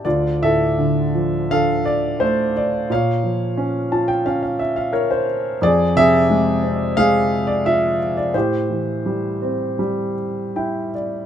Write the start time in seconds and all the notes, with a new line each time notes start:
0.05 D2 F4 D5
0.42 A2 A4 E5
0.78 D3
1.15 F3
1.51 D3 A4 F5
1.85 D5
2.20 A3 C5
2.57 D5
2.90 A#2 C#5 F5
3.24 F3
3.57 C#4
3.92 F4 A5
4.08 G5
4.26 C#4 F5
4.43 F5
4.59 E5
4.76 F5
4.93 A#4 C#5
5.11 C5
5.62 F2 G#4 D5
5.96 C3 G#4 E5
6.30 G#3
6.63 C4
6.97 G#3 G#4 F5
7.47 D5
7.66 F4 E5
8.17 D5
8.34 A2 G4 C5
8.70 E3
9.06 G3
9.42 C4
9.79 G3
10.56 E4 G5
10.95 D5